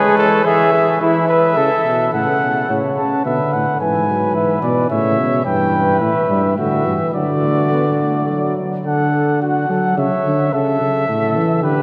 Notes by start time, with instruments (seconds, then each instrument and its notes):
Already playing: trombone G#3, trumpet G#4 B4
0.17 trumpet A4
0.45 trombone E3, trumpet G#4 E5
0.73 trumpet G#4
1.01 trombone E3, trumpet E4 E5
1.28 trumpet B4
1.57 trombone C#3, trumpet A4
1.85 trombone B2
2.12 bass trombone A2, trombone C#3, trumpet A4 F#5
2.42 bass trombone B2
2.69 bass trombone A2, trombone C#3, trumpet C#5
2.97 bass trombone C#3, trumpet A5
3.25 bass trombone B2, trombone D3, trumpet B4 E5
3.53 bass trombone A2, trumpet F#5
3.80 bass trombone G#2, trombone E3, trumpet B4 G#5
4.08 trombone F#3
4.35 trombone E3, trumpet E5
4.62 bass trombone B2, trumpet D5
4.90 bass trombone A2, trombone C#3, trumpet C#5 E5
5.19 bass trombone B2
5.45 bass trombone G2, trombone E3, trumpet B4 G5
6.00 bass trombone A2, trumpet E5
6.29 bass trombone G2, trombone G3
6.57 bass trombone A2, trombone D3, trumpet F#4 E5
6.85 bass trombone G2, trombone E3
7.14 bass trombone D3, trombone F#3, trumpet F#4 D5
7.43 trombone A3
7.72 trombone B3
8.00 trombone A3
8.28 trombone F#3
8.86 bass trombone D3, trumpet A4 F#5
9.42 trumpet F#4 F#5
9.70 bass trombone F#3, trumpet A4
9.97 bass trombone C#3, trumpet C#5 E5
10.26 bass trombone D3
10.53 bass trombone C#3, trumpet A4 E5
10.81 bass trombone C#3
11.08 bass trombone A2, trumpet A4
11.37 bass trombone E3
11.63 bass trombone D3, trumpet G4 B4